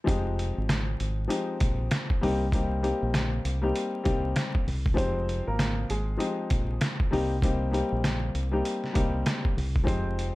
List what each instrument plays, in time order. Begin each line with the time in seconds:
0.04 fingered electric bass F1, grand piano F3 G#3 C4 D#4 G4, kick
0.08 closed hi-hat
0.39 closed hi-hat
0.58 fingered electric bass G#1
0.69 snare, closed hi-hat
1.00 fingered electric bass G#1, closed hi-hat
1.28 grand piano F3 G#3 C4 D#4 G4, closed hi-hat
1.60 fingered electric bass A#1, kick, closed hi-hat
1.91 snare, closed hi-hat
2.10 kick
2.21 fingered electric bass C2, grand piano G3 A#3 C4 D#4 G4, open hi-hat
2.52 grand piano G3 A#3 C4 D#4 G4, kick, closed hi-hat
2.82 grand piano G3 A#3 C4 D#4 G4, closed hi-hat
3.03 fingered electric bass A#1
3.14 snare, closed hi-hat
3.45 fingered electric bass C2, closed hi-hat
3.62 grand piano G3 A#3 C4 D#4 G4
3.75 closed hi-hat
4.04 fingered electric bass C2, grand piano G3 A#3 C4 D#4 G4, kick, closed hi-hat
4.36 snare, closed hi-hat
4.55 kick
4.67 fingered electric bass C2, open hi-hat
4.86 kick
4.94 fingered electric bass F1, grand piano F3 G#3 C4 D#4 G4, upright piano C5, kick
4.98 upright piano C4, closed hi-hat
5.29 closed hi-hat
5.47 fingered electric bass G#1, upright piano A#3 A#4
5.59 snare, closed hi-hat
5.90 fingered electric bass G#1, upright piano G#3 G#4, closed hi-hat
6.17 grand piano F3 G#3 C4 D#4 G4, closed hi-hat
6.50 fingered electric bass A#1, kick, closed hi-hat
6.81 snare, closed hi-hat
7.00 kick
7.11 fingered electric bass C2, grand piano G3 A#3 C4 D#4 G4, open hi-hat
7.42 grand piano G3 A#3 C4 D#4 G4, kick, closed hi-hat
7.71 grand piano G3 A#3 C4 D#4 G4, closed hi-hat
7.92 fingered electric bass A#1
8.04 snare, closed hi-hat
8.35 fingered electric bass C2, closed hi-hat
8.52 grand piano G3 A#3 C4 D#4 G4
8.65 closed hi-hat
8.84 snare
8.93 fingered electric bass C2, grand piano G3 A#3 C4 D#4 G4, kick, closed hi-hat
9.26 snare, closed hi-hat
9.45 kick
9.57 fingered electric bass C2, open hi-hat
9.76 kick
9.84 fingered electric bass F1, grand piano F3 G#3 C4 D#4 G4, upright piano C5, kick
9.88 upright piano C4, closed hi-hat
10.19 closed hi-hat